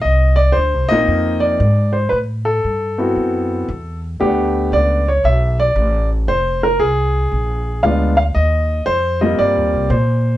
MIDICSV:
0, 0, Header, 1, 3, 480
1, 0, Start_track
1, 0, Tempo, 519031
1, 38, Time_signature, 4, 2, 24, 8
1, 9592, End_track
2, 0, Start_track
2, 0, Title_t, "Grand piano"
2, 0, Program_c, 0, 0
2, 14, Note_on_c, 0, 75, 96
2, 331, Note_on_c, 0, 74, 106
2, 359, Note_off_c, 0, 75, 0
2, 485, Note_on_c, 0, 72, 104
2, 509, Note_off_c, 0, 74, 0
2, 819, Note_on_c, 0, 75, 114
2, 835, Note_off_c, 0, 72, 0
2, 839, Note_on_c, 0, 58, 75
2, 841, Note_on_c, 0, 60, 65
2, 844, Note_on_c, 0, 63, 74
2, 847, Note_on_c, 0, 65, 75
2, 1297, Note_on_c, 0, 74, 93
2, 1327, Note_off_c, 0, 75, 0
2, 1448, Note_off_c, 0, 58, 0
2, 1449, Note_off_c, 0, 60, 0
2, 1451, Note_off_c, 0, 63, 0
2, 1452, Note_off_c, 0, 65, 0
2, 1782, Note_on_c, 0, 72, 80
2, 1806, Note_off_c, 0, 74, 0
2, 1934, Note_on_c, 0, 71, 91
2, 1939, Note_off_c, 0, 72, 0
2, 2010, Note_off_c, 0, 71, 0
2, 2267, Note_on_c, 0, 69, 88
2, 2758, Note_on_c, 0, 59, 62
2, 2762, Note_on_c, 0, 60, 54
2, 2768, Note_on_c, 0, 64, 50
2, 2771, Note_on_c, 0, 66, 67
2, 3369, Note_off_c, 0, 59, 0
2, 3371, Note_off_c, 0, 60, 0
2, 3374, Note_off_c, 0, 64, 0
2, 3376, Note_off_c, 0, 66, 0
2, 3681, Note_off_c, 0, 69, 0
2, 3881, Note_on_c, 0, 57, 58
2, 3888, Note_on_c, 0, 59, 61
2, 3889, Note_on_c, 0, 67, 91
2, 3891, Note_on_c, 0, 62, 49
2, 3891, Note_on_c, 0, 78, 61
2, 4376, Note_on_c, 0, 74, 101
2, 4382, Note_off_c, 0, 67, 0
2, 4622, Note_off_c, 0, 57, 0
2, 4625, Note_off_c, 0, 59, 0
2, 4626, Note_off_c, 0, 62, 0
2, 4626, Note_off_c, 0, 78, 0
2, 4701, Note_on_c, 0, 73, 89
2, 4703, Note_off_c, 0, 74, 0
2, 4855, Note_on_c, 0, 76, 98
2, 4857, Note_off_c, 0, 73, 0
2, 5151, Note_off_c, 0, 76, 0
2, 5175, Note_on_c, 0, 74, 103
2, 5618, Note_off_c, 0, 74, 0
2, 5810, Note_on_c, 0, 72, 100
2, 6107, Note_off_c, 0, 72, 0
2, 6134, Note_on_c, 0, 70, 94
2, 6278, Note_off_c, 0, 70, 0
2, 6285, Note_on_c, 0, 68, 98
2, 7207, Note_off_c, 0, 68, 0
2, 7240, Note_on_c, 0, 77, 87
2, 7245, Note_on_c, 0, 56, 66
2, 7247, Note_on_c, 0, 59, 67
2, 7251, Note_on_c, 0, 62, 61
2, 7256, Note_on_c, 0, 65, 71
2, 7534, Note_off_c, 0, 56, 0
2, 7535, Note_off_c, 0, 59, 0
2, 7537, Note_off_c, 0, 62, 0
2, 7540, Note_off_c, 0, 65, 0
2, 7541, Note_off_c, 0, 77, 0
2, 7555, Note_on_c, 0, 77, 100
2, 7601, Note_off_c, 0, 77, 0
2, 7718, Note_on_c, 0, 75, 99
2, 8166, Note_off_c, 0, 75, 0
2, 8192, Note_on_c, 0, 72, 115
2, 8496, Note_off_c, 0, 72, 0
2, 8518, Note_on_c, 0, 75, 85
2, 8519, Note_on_c, 0, 55, 73
2, 8526, Note_on_c, 0, 58, 62
2, 8529, Note_on_c, 0, 60, 70
2, 8531, Note_on_c, 0, 65, 80
2, 8680, Note_on_c, 0, 74, 101
2, 8683, Note_off_c, 0, 75, 0
2, 9125, Note_off_c, 0, 55, 0
2, 9129, Note_off_c, 0, 58, 0
2, 9130, Note_off_c, 0, 60, 0
2, 9132, Note_off_c, 0, 65, 0
2, 9158, Note_on_c, 0, 72, 80
2, 9173, Note_off_c, 0, 74, 0
2, 9592, Note_off_c, 0, 72, 0
2, 9592, End_track
3, 0, Start_track
3, 0, Title_t, "Upright bass"
3, 0, Program_c, 1, 32
3, 43, Note_on_c, 1, 36, 82
3, 507, Note_off_c, 1, 36, 0
3, 525, Note_on_c, 1, 38, 89
3, 681, Note_off_c, 1, 38, 0
3, 681, Note_on_c, 1, 36, 52
3, 833, Note_off_c, 1, 36, 0
3, 994, Note_on_c, 1, 41, 81
3, 1464, Note_off_c, 1, 41, 0
3, 1479, Note_on_c, 1, 44, 107
3, 1947, Note_off_c, 1, 44, 0
3, 1963, Note_on_c, 1, 45, 84
3, 2429, Note_off_c, 1, 45, 0
3, 2443, Note_on_c, 1, 43, 79
3, 2910, Note_off_c, 1, 43, 0
3, 2922, Note_on_c, 1, 42, 74
3, 3389, Note_off_c, 1, 42, 0
3, 3408, Note_on_c, 1, 40, 95
3, 3873, Note_off_c, 1, 40, 0
3, 3896, Note_on_c, 1, 38, 86
3, 4357, Note_off_c, 1, 38, 0
3, 4365, Note_on_c, 1, 37, 91
3, 4831, Note_off_c, 1, 37, 0
3, 4845, Note_on_c, 1, 35, 92
3, 5311, Note_off_c, 1, 35, 0
3, 5323, Note_on_c, 1, 33, 104
3, 5790, Note_off_c, 1, 33, 0
3, 5803, Note_on_c, 1, 29, 75
3, 6269, Note_off_c, 1, 29, 0
3, 6281, Note_on_c, 1, 36, 81
3, 6748, Note_off_c, 1, 36, 0
3, 6766, Note_on_c, 1, 34, 88
3, 7230, Note_off_c, 1, 34, 0
3, 7246, Note_on_c, 1, 38, 104
3, 7710, Note_off_c, 1, 38, 0
3, 7728, Note_on_c, 1, 39, 87
3, 8190, Note_off_c, 1, 39, 0
3, 8200, Note_on_c, 1, 41, 96
3, 8665, Note_off_c, 1, 41, 0
3, 8686, Note_on_c, 1, 43, 82
3, 8843, Note_off_c, 1, 43, 0
3, 8843, Note_on_c, 1, 39, 54
3, 8994, Note_off_c, 1, 39, 0
3, 9000, Note_on_c, 1, 36, 73
3, 9148, Note_off_c, 1, 36, 0
3, 9155, Note_on_c, 1, 46, 113
3, 9592, Note_off_c, 1, 46, 0
3, 9592, End_track
0, 0, End_of_file